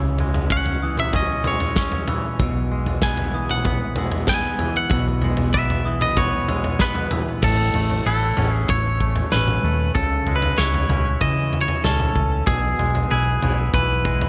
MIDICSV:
0, 0, Header, 1, 6, 480
1, 0, Start_track
1, 0, Key_signature, 4, "major"
1, 0, Tempo, 630252
1, 1827, Time_signature, 4, 2, 24, 8
1, 10883, End_track
2, 0, Start_track
2, 0, Title_t, "Glockenspiel"
2, 0, Program_c, 0, 9
2, 0, Note_on_c, 0, 88, 66
2, 389, Note_off_c, 0, 88, 0
2, 627, Note_on_c, 0, 87, 62
2, 1106, Note_on_c, 0, 88, 56
2, 1107, Note_off_c, 0, 87, 0
2, 1578, Note_off_c, 0, 88, 0
2, 1587, Note_on_c, 0, 88, 65
2, 1817, Note_off_c, 0, 88, 0
2, 1826, Note_on_c, 0, 88, 70
2, 2307, Note_off_c, 0, 88, 0
2, 2545, Note_on_c, 0, 87, 59
2, 3026, Note_off_c, 0, 87, 0
2, 3028, Note_on_c, 0, 88, 56
2, 3497, Note_off_c, 0, 88, 0
2, 3506, Note_on_c, 0, 88, 57
2, 3730, Note_off_c, 0, 88, 0
2, 3739, Note_on_c, 0, 88, 70
2, 4222, Note_off_c, 0, 88, 0
2, 4457, Note_on_c, 0, 87, 62
2, 4938, Note_on_c, 0, 88, 55
2, 4941, Note_off_c, 0, 87, 0
2, 5409, Note_off_c, 0, 88, 0
2, 5419, Note_on_c, 0, 88, 56
2, 5653, Note_off_c, 0, 88, 0
2, 5662, Note_on_c, 0, 88, 61
2, 6139, Note_on_c, 0, 90, 56
2, 6142, Note_off_c, 0, 88, 0
2, 6621, Note_off_c, 0, 90, 0
2, 6622, Note_on_c, 0, 88, 60
2, 7095, Note_off_c, 0, 88, 0
2, 7104, Note_on_c, 0, 88, 62
2, 7576, Note_off_c, 0, 88, 0
2, 7585, Note_on_c, 0, 88, 69
2, 8062, Note_on_c, 0, 90, 59
2, 8063, Note_off_c, 0, 88, 0
2, 8542, Note_off_c, 0, 90, 0
2, 8543, Note_on_c, 0, 100, 61
2, 9017, Note_on_c, 0, 88, 62
2, 9022, Note_off_c, 0, 100, 0
2, 9487, Note_off_c, 0, 88, 0
2, 9496, Note_on_c, 0, 88, 72
2, 9979, Note_off_c, 0, 88, 0
2, 9980, Note_on_c, 0, 90, 65
2, 10461, Note_off_c, 0, 90, 0
2, 10462, Note_on_c, 0, 88, 65
2, 10883, Note_off_c, 0, 88, 0
2, 10883, End_track
3, 0, Start_track
3, 0, Title_t, "Clean electric guitar"
3, 0, Program_c, 1, 27
3, 397, Note_on_c, 1, 78, 76
3, 727, Note_off_c, 1, 78, 0
3, 759, Note_on_c, 1, 76, 78
3, 876, Note_off_c, 1, 76, 0
3, 883, Note_on_c, 1, 75, 70
3, 1122, Note_off_c, 1, 75, 0
3, 1122, Note_on_c, 1, 73, 62
3, 1564, Note_off_c, 1, 73, 0
3, 2309, Note_on_c, 1, 80, 78
3, 2668, Note_off_c, 1, 80, 0
3, 2671, Note_on_c, 1, 78, 71
3, 2892, Note_off_c, 1, 78, 0
3, 3270, Note_on_c, 1, 80, 74
3, 3603, Note_off_c, 1, 80, 0
3, 3631, Note_on_c, 1, 78, 60
3, 3852, Note_off_c, 1, 78, 0
3, 4220, Note_on_c, 1, 76, 84
3, 4582, Note_off_c, 1, 76, 0
3, 4585, Note_on_c, 1, 75, 76
3, 4705, Note_on_c, 1, 73, 75
3, 4709, Note_off_c, 1, 75, 0
3, 5186, Note_off_c, 1, 73, 0
3, 5190, Note_on_c, 1, 71, 53
3, 5522, Note_off_c, 1, 71, 0
3, 5667, Note_on_c, 1, 69, 64
3, 6134, Note_off_c, 1, 69, 0
3, 6143, Note_on_c, 1, 69, 61
3, 6493, Note_off_c, 1, 69, 0
3, 6493, Note_on_c, 1, 68, 61
3, 6625, Note_on_c, 1, 73, 68
3, 6637, Note_off_c, 1, 68, 0
3, 7098, Note_on_c, 1, 71, 65
3, 7118, Note_off_c, 1, 73, 0
3, 7550, Note_off_c, 1, 71, 0
3, 7576, Note_on_c, 1, 69, 70
3, 7885, Note_off_c, 1, 69, 0
3, 7888, Note_on_c, 1, 71, 63
3, 8056, Note_on_c, 1, 73, 72
3, 8060, Note_off_c, 1, 71, 0
3, 8537, Note_off_c, 1, 73, 0
3, 8540, Note_on_c, 1, 75, 68
3, 8839, Note_off_c, 1, 75, 0
3, 8844, Note_on_c, 1, 73, 71
3, 9001, Note_off_c, 1, 73, 0
3, 9017, Note_on_c, 1, 69, 63
3, 9493, Note_off_c, 1, 69, 0
3, 9497, Note_on_c, 1, 68, 70
3, 9977, Note_off_c, 1, 68, 0
3, 9986, Note_on_c, 1, 68, 67
3, 10463, Note_off_c, 1, 68, 0
3, 10466, Note_on_c, 1, 71, 70
3, 10883, Note_off_c, 1, 71, 0
3, 10883, End_track
4, 0, Start_track
4, 0, Title_t, "Clean electric guitar"
4, 0, Program_c, 2, 27
4, 0, Note_on_c, 2, 49, 56
4, 0, Note_on_c, 2, 52, 52
4, 154, Note_on_c, 2, 56, 50
4, 393, Note_on_c, 2, 61, 52
4, 633, Note_off_c, 2, 52, 0
4, 636, Note_on_c, 2, 52, 52
4, 859, Note_off_c, 2, 61, 0
4, 868, Note_on_c, 2, 61, 59
4, 1109, Note_off_c, 2, 56, 0
4, 1110, Note_off_c, 2, 49, 0
4, 1112, Note_on_c, 2, 56, 48
4, 1343, Note_off_c, 2, 61, 0
4, 1352, Note_on_c, 2, 61, 56
4, 1587, Note_off_c, 2, 52, 0
4, 1590, Note_on_c, 2, 52, 51
4, 1830, Note_off_c, 2, 61, 0
4, 1835, Note_on_c, 2, 47, 56
4, 2066, Note_off_c, 2, 56, 0
4, 2069, Note_on_c, 2, 56, 54
4, 2312, Note_on_c, 2, 59, 55
4, 2546, Note_off_c, 2, 52, 0
4, 2549, Note_on_c, 2, 52, 53
4, 2782, Note_off_c, 2, 59, 0
4, 2791, Note_on_c, 2, 59, 57
4, 3026, Note_off_c, 2, 56, 0
4, 3031, Note_off_c, 2, 47, 0
4, 3035, Note_on_c, 2, 56, 46
4, 3261, Note_off_c, 2, 59, 0
4, 3270, Note_on_c, 2, 59, 59
4, 3510, Note_off_c, 2, 52, 0
4, 3513, Note_on_c, 2, 52, 54
4, 3755, Note_on_c, 2, 47, 64
4, 3981, Note_off_c, 2, 56, 0
4, 3990, Note_on_c, 2, 56, 54
4, 4219, Note_off_c, 2, 59, 0
4, 4228, Note_on_c, 2, 59, 61
4, 4457, Note_off_c, 2, 52, 0
4, 4466, Note_on_c, 2, 52, 53
4, 4697, Note_off_c, 2, 59, 0
4, 4707, Note_on_c, 2, 59, 60
4, 4934, Note_off_c, 2, 56, 0
4, 4943, Note_on_c, 2, 56, 51
4, 4949, Note_off_c, 2, 47, 0
4, 5175, Note_off_c, 2, 59, 0
4, 5184, Note_on_c, 2, 59, 58
4, 5415, Note_off_c, 2, 52, 0
4, 5424, Note_on_c, 2, 52, 53
4, 5663, Note_off_c, 2, 56, 0
4, 5664, Note_off_c, 2, 52, 0
4, 5664, Note_off_c, 2, 59, 0
4, 5666, Note_on_c, 2, 45, 55
4, 5903, Note_on_c, 2, 57, 49
4, 6142, Note_on_c, 2, 64, 55
4, 6385, Note_on_c, 2, 61, 50
4, 6854, Note_off_c, 2, 57, 0
4, 6863, Note_on_c, 2, 57, 46
4, 6864, Note_off_c, 2, 45, 0
4, 7094, Note_off_c, 2, 61, 0
4, 7104, Note_on_c, 2, 61, 53
4, 7336, Note_off_c, 2, 57, 0
4, 7345, Note_on_c, 2, 57, 50
4, 7583, Note_off_c, 2, 57, 0
4, 7583, Note_off_c, 2, 61, 0
4, 7585, Note_on_c, 2, 49, 58
4, 7823, Note_on_c, 2, 56, 50
4, 8056, Note_off_c, 2, 64, 0
4, 8059, Note_on_c, 2, 64, 60
4, 8296, Note_on_c, 2, 61, 46
4, 8536, Note_on_c, 2, 52, 61
4, 8783, Note_off_c, 2, 49, 0
4, 9012, Note_off_c, 2, 61, 0
4, 9022, Note_on_c, 2, 61, 53
4, 9497, Note_on_c, 2, 47, 61
4, 9502, Note_off_c, 2, 61, 0
4, 9741, Note_off_c, 2, 56, 0
4, 9744, Note_on_c, 2, 56, 51
4, 9980, Note_off_c, 2, 64, 0
4, 9983, Note_on_c, 2, 64, 56
4, 10228, Note_on_c, 2, 59, 48
4, 10470, Note_off_c, 2, 52, 0
4, 10473, Note_on_c, 2, 52, 65
4, 10697, Note_off_c, 2, 56, 0
4, 10700, Note_off_c, 2, 47, 0
4, 10706, Note_on_c, 2, 56, 48
4, 10883, Note_off_c, 2, 52, 0
4, 10883, Note_off_c, 2, 56, 0
4, 10883, Note_off_c, 2, 59, 0
4, 10883, Note_off_c, 2, 64, 0
4, 10883, End_track
5, 0, Start_track
5, 0, Title_t, "Fingered electric bass"
5, 0, Program_c, 3, 33
5, 0, Note_on_c, 3, 37, 68
5, 1797, Note_off_c, 3, 37, 0
5, 1824, Note_on_c, 3, 35, 75
5, 3714, Note_off_c, 3, 35, 0
5, 3737, Note_on_c, 3, 35, 74
5, 5629, Note_off_c, 3, 35, 0
5, 5657, Note_on_c, 3, 33, 72
5, 5858, Note_off_c, 3, 33, 0
5, 5897, Note_on_c, 3, 33, 52
5, 6098, Note_off_c, 3, 33, 0
5, 6138, Note_on_c, 3, 33, 66
5, 6339, Note_off_c, 3, 33, 0
5, 6378, Note_on_c, 3, 33, 65
5, 6578, Note_off_c, 3, 33, 0
5, 6622, Note_on_c, 3, 33, 66
5, 7019, Note_off_c, 3, 33, 0
5, 7099, Note_on_c, 3, 33, 67
5, 7299, Note_off_c, 3, 33, 0
5, 7337, Note_on_c, 3, 39, 59
5, 7537, Note_off_c, 3, 39, 0
5, 7581, Note_on_c, 3, 37, 77
5, 7780, Note_off_c, 3, 37, 0
5, 7811, Note_on_c, 3, 37, 63
5, 8014, Note_off_c, 3, 37, 0
5, 8060, Note_on_c, 3, 37, 69
5, 8259, Note_off_c, 3, 37, 0
5, 8294, Note_on_c, 3, 37, 67
5, 8495, Note_off_c, 3, 37, 0
5, 8541, Note_on_c, 3, 49, 66
5, 8938, Note_off_c, 3, 49, 0
5, 9021, Note_on_c, 3, 37, 72
5, 9220, Note_off_c, 3, 37, 0
5, 9259, Note_on_c, 3, 37, 68
5, 9459, Note_off_c, 3, 37, 0
5, 9499, Note_on_c, 3, 35, 83
5, 9699, Note_off_c, 3, 35, 0
5, 9744, Note_on_c, 3, 35, 61
5, 9942, Note_off_c, 3, 35, 0
5, 9988, Note_on_c, 3, 35, 76
5, 10184, Note_off_c, 3, 35, 0
5, 10229, Note_on_c, 3, 35, 66
5, 10425, Note_off_c, 3, 35, 0
5, 10463, Note_on_c, 3, 35, 72
5, 10860, Note_off_c, 3, 35, 0
5, 10883, End_track
6, 0, Start_track
6, 0, Title_t, "Drums"
6, 141, Note_on_c, 9, 43, 53
6, 217, Note_off_c, 9, 43, 0
6, 262, Note_on_c, 9, 43, 64
6, 338, Note_off_c, 9, 43, 0
6, 383, Note_on_c, 9, 36, 80
6, 459, Note_off_c, 9, 36, 0
6, 500, Note_on_c, 9, 43, 54
6, 576, Note_off_c, 9, 43, 0
6, 741, Note_on_c, 9, 47, 52
6, 817, Note_off_c, 9, 47, 0
6, 861, Note_on_c, 9, 43, 63
6, 861, Note_on_c, 9, 47, 59
6, 864, Note_on_c, 9, 36, 73
6, 937, Note_off_c, 9, 43, 0
6, 937, Note_off_c, 9, 47, 0
6, 940, Note_off_c, 9, 36, 0
6, 1098, Note_on_c, 9, 43, 60
6, 1098, Note_on_c, 9, 47, 62
6, 1174, Note_off_c, 9, 43, 0
6, 1174, Note_off_c, 9, 47, 0
6, 1221, Note_on_c, 9, 43, 64
6, 1297, Note_off_c, 9, 43, 0
6, 1340, Note_on_c, 9, 38, 54
6, 1344, Note_on_c, 9, 36, 73
6, 1416, Note_off_c, 9, 38, 0
6, 1420, Note_off_c, 9, 36, 0
6, 1460, Note_on_c, 9, 43, 56
6, 1536, Note_off_c, 9, 43, 0
6, 1581, Note_on_c, 9, 43, 64
6, 1581, Note_on_c, 9, 47, 58
6, 1657, Note_off_c, 9, 43, 0
6, 1657, Note_off_c, 9, 47, 0
6, 1824, Note_on_c, 9, 43, 63
6, 1825, Note_on_c, 9, 36, 84
6, 1900, Note_off_c, 9, 43, 0
6, 1901, Note_off_c, 9, 36, 0
6, 2181, Note_on_c, 9, 43, 60
6, 2257, Note_off_c, 9, 43, 0
6, 2297, Note_on_c, 9, 38, 62
6, 2302, Note_on_c, 9, 36, 80
6, 2373, Note_off_c, 9, 38, 0
6, 2379, Note_off_c, 9, 36, 0
6, 2417, Note_on_c, 9, 43, 66
6, 2493, Note_off_c, 9, 43, 0
6, 2662, Note_on_c, 9, 47, 58
6, 2738, Note_off_c, 9, 47, 0
6, 2778, Note_on_c, 9, 43, 59
6, 2778, Note_on_c, 9, 47, 59
6, 2781, Note_on_c, 9, 36, 76
6, 2854, Note_off_c, 9, 43, 0
6, 2854, Note_off_c, 9, 47, 0
6, 2857, Note_off_c, 9, 36, 0
6, 3014, Note_on_c, 9, 43, 63
6, 3014, Note_on_c, 9, 47, 61
6, 3090, Note_off_c, 9, 43, 0
6, 3090, Note_off_c, 9, 47, 0
6, 3134, Note_on_c, 9, 43, 70
6, 3211, Note_off_c, 9, 43, 0
6, 3253, Note_on_c, 9, 38, 60
6, 3259, Note_on_c, 9, 36, 76
6, 3329, Note_off_c, 9, 38, 0
6, 3335, Note_off_c, 9, 36, 0
6, 3495, Note_on_c, 9, 43, 62
6, 3571, Note_off_c, 9, 43, 0
6, 3729, Note_on_c, 9, 43, 69
6, 3738, Note_on_c, 9, 36, 82
6, 3805, Note_off_c, 9, 43, 0
6, 3814, Note_off_c, 9, 36, 0
6, 3972, Note_on_c, 9, 43, 62
6, 4048, Note_off_c, 9, 43, 0
6, 4090, Note_on_c, 9, 43, 64
6, 4166, Note_off_c, 9, 43, 0
6, 4220, Note_on_c, 9, 36, 82
6, 4296, Note_off_c, 9, 36, 0
6, 4342, Note_on_c, 9, 43, 62
6, 4418, Note_off_c, 9, 43, 0
6, 4577, Note_on_c, 9, 47, 53
6, 4654, Note_off_c, 9, 47, 0
6, 4697, Note_on_c, 9, 43, 62
6, 4697, Note_on_c, 9, 47, 59
6, 4700, Note_on_c, 9, 36, 79
6, 4774, Note_off_c, 9, 43, 0
6, 4774, Note_off_c, 9, 47, 0
6, 4776, Note_off_c, 9, 36, 0
6, 4939, Note_on_c, 9, 43, 61
6, 4939, Note_on_c, 9, 47, 62
6, 5015, Note_off_c, 9, 43, 0
6, 5015, Note_off_c, 9, 47, 0
6, 5058, Note_on_c, 9, 43, 61
6, 5134, Note_off_c, 9, 43, 0
6, 5173, Note_on_c, 9, 38, 54
6, 5177, Note_on_c, 9, 36, 78
6, 5249, Note_off_c, 9, 38, 0
6, 5253, Note_off_c, 9, 36, 0
6, 5293, Note_on_c, 9, 43, 61
6, 5370, Note_off_c, 9, 43, 0
6, 5414, Note_on_c, 9, 43, 69
6, 5414, Note_on_c, 9, 47, 59
6, 5490, Note_off_c, 9, 43, 0
6, 5490, Note_off_c, 9, 47, 0
6, 5653, Note_on_c, 9, 43, 62
6, 5653, Note_on_c, 9, 49, 74
6, 5657, Note_on_c, 9, 36, 84
6, 5729, Note_off_c, 9, 43, 0
6, 5729, Note_off_c, 9, 49, 0
6, 5733, Note_off_c, 9, 36, 0
6, 5893, Note_on_c, 9, 43, 62
6, 5969, Note_off_c, 9, 43, 0
6, 6014, Note_on_c, 9, 43, 55
6, 6090, Note_off_c, 9, 43, 0
6, 6374, Note_on_c, 9, 43, 73
6, 6450, Note_off_c, 9, 43, 0
6, 6615, Note_on_c, 9, 43, 60
6, 6618, Note_on_c, 9, 36, 77
6, 6691, Note_off_c, 9, 43, 0
6, 6694, Note_off_c, 9, 36, 0
6, 6858, Note_on_c, 9, 36, 55
6, 6934, Note_off_c, 9, 36, 0
6, 6973, Note_on_c, 9, 43, 65
6, 7049, Note_off_c, 9, 43, 0
6, 7097, Note_on_c, 9, 38, 56
6, 7097, Note_on_c, 9, 47, 57
6, 7173, Note_off_c, 9, 38, 0
6, 7173, Note_off_c, 9, 47, 0
6, 7217, Note_on_c, 9, 47, 57
6, 7293, Note_off_c, 9, 47, 0
6, 7580, Note_on_c, 9, 36, 88
6, 7580, Note_on_c, 9, 43, 66
6, 7656, Note_off_c, 9, 36, 0
6, 7656, Note_off_c, 9, 43, 0
6, 7819, Note_on_c, 9, 43, 58
6, 7895, Note_off_c, 9, 43, 0
6, 7938, Note_on_c, 9, 43, 61
6, 8014, Note_off_c, 9, 43, 0
6, 8058, Note_on_c, 9, 38, 56
6, 8134, Note_off_c, 9, 38, 0
6, 8181, Note_on_c, 9, 43, 58
6, 8257, Note_off_c, 9, 43, 0
6, 8299, Note_on_c, 9, 43, 73
6, 8299, Note_on_c, 9, 47, 62
6, 8375, Note_off_c, 9, 43, 0
6, 8375, Note_off_c, 9, 47, 0
6, 8538, Note_on_c, 9, 43, 61
6, 8539, Note_on_c, 9, 36, 78
6, 8614, Note_off_c, 9, 43, 0
6, 8615, Note_off_c, 9, 36, 0
6, 8779, Note_on_c, 9, 43, 58
6, 8855, Note_off_c, 9, 43, 0
6, 8897, Note_on_c, 9, 43, 65
6, 8973, Note_off_c, 9, 43, 0
6, 9021, Note_on_c, 9, 38, 60
6, 9021, Note_on_c, 9, 47, 53
6, 9097, Note_off_c, 9, 38, 0
6, 9097, Note_off_c, 9, 47, 0
6, 9137, Note_on_c, 9, 43, 55
6, 9137, Note_on_c, 9, 47, 54
6, 9213, Note_off_c, 9, 43, 0
6, 9213, Note_off_c, 9, 47, 0
6, 9258, Note_on_c, 9, 36, 50
6, 9334, Note_off_c, 9, 36, 0
6, 9498, Note_on_c, 9, 36, 87
6, 9501, Note_on_c, 9, 43, 64
6, 9574, Note_off_c, 9, 36, 0
6, 9578, Note_off_c, 9, 43, 0
6, 9743, Note_on_c, 9, 43, 59
6, 9819, Note_off_c, 9, 43, 0
6, 9862, Note_on_c, 9, 43, 65
6, 9938, Note_off_c, 9, 43, 0
6, 10224, Note_on_c, 9, 43, 71
6, 10300, Note_off_c, 9, 43, 0
6, 10462, Note_on_c, 9, 36, 81
6, 10465, Note_on_c, 9, 43, 59
6, 10538, Note_off_c, 9, 36, 0
6, 10541, Note_off_c, 9, 43, 0
6, 10701, Note_on_c, 9, 36, 60
6, 10777, Note_off_c, 9, 36, 0
6, 10826, Note_on_c, 9, 43, 63
6, 10883, Note_off_c, 9, 43, 0
6, 10883, End_track
0, 0, End_of_file